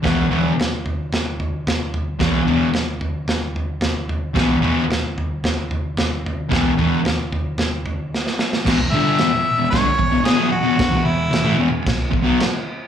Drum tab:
CC |----------------|----------------|----------------|----------------|
SD |o---o---o---o---|o---o---o---o---|o---o---o---o---|o---o---o---oooo|
FT |o-o-o-o-o-o-o-o-|o-o-o-o-o-o-o-o-|o-o-o-o-o-o-o-o-|o-o-o-o-o-o-----|
BD |o---------------|o---------------|o---------------|o---------------|

CC |x---x---x---x---|x---x---x---x---|
SD |o---o---o---o---|o---o---o---o---|
FT |----------------|----------------|
BD |o-------o-o-----|o-------o-o-----|